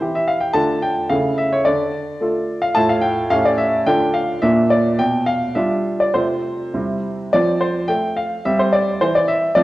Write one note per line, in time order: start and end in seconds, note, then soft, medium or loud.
0.00 0.51 E3 soft
0.00 0.51 E4 soft
0.00 0.52 G4 soft
0.00 0.14 C5 medium
0.15 0.28 E5 medium
0.28 0.41 F5 medium
0.40 0.55 G5 medium
0.53 1.08 D3 medium
0.53 1.06 A3 soft
0.53 1.06 D4 soft
0.53 1.06 F4 soft
0.53 0.82 A5 medium
0.82 1.10 G5 medium
1.10 1.64 C#3 medium
1.10 1.61 A3 soft
1.10 1.62 E4 soft
1.10 1.62 A4 soft
1.10 1.37 F5 medium
1.38 1.52 E5 medium
1.53 1.66 C#5 medium
1.65 2.19 D3 medium
1.65 2.61 D5 medium
2.20 2.71 A3 soft
2.20 2.72 F4 soft
2.20 2.72 A4 soft
2.62 2.75 F5 medium
2.75 3.29 A2 medium
2.75 3.26 A3 soft
2.75 3.26 F4 soft
2.75 3.27 A4 soft
2.75 2.89 A5 medium
2.89 3.03 F5 medium
3.01 3.29 G5 medium
3.30 3.84 A2 medium
3.30 3.82 A3 soft
3.30 3.83 C#4 soft
3.30 3.83 G4 soft
3.30 3.44 F5 medium
3.45 3.58 D5 medium
3.58 3.86 E5 medium
3.86 4.40 D3 medium
3.86 4.38 A3 soft
3.86 4.38 D4 soft
3.86 4.39 F4 soft
3.86 4.14 G5 medium
4.14 4.42 F5 medium
4.42 4.97 A#2 medium
4.42 4.95 A#3 soft
4.42 4.95 D4 soft
4.42 4.95 F4 soft
4.42 4.70 E5 medium
4.70 4.99 D5 medium
4.99 5.54 B2 medium
4.99 5.27 G5 medium
5.26 5.55 F5 medium
5.55 6.11 G3 soft
5.55 6.11 D4 soft
5.55 6.11 F4 soft
5.55 6.00 E5 medium
6.00 6.15 D5 medium
6.14 6.72 C3 medium
6.14 6.70 A3 soft
6.14 6.70 C4 soft
6.14 6.71 F4 soft
6.14 7.04 C5 medium
6.74 7.31 C3 medium
6.74 7.29 G3 soft
6.74 7.29 C4 soft
6.74 7.29 E4 soft
7.33 7.78 F3 medium
7.33 8.41 C4 soft
7.33 7.61 D5 medium
7.61 7.89 C5 medium
7.88 8.34 A3 medium
7.88 8.16 G5 medium
8.17 8.45 F5 medium
8.45 8.90 G3 medium
8.45 9.53 C4 soft
8.45 8.59 E5 medium
8.59 8.73 C5 medium
8.73 9.01 D5 medium
9.01 9.45 E3 medium
9.01 9.15 C5 medium
9.15 9.29 D5 medium
9.28 9.56 E5 medium
9.55 9.63 F3 medium
9.55 9.63 C4 soft
9.55 9.63 D5 medium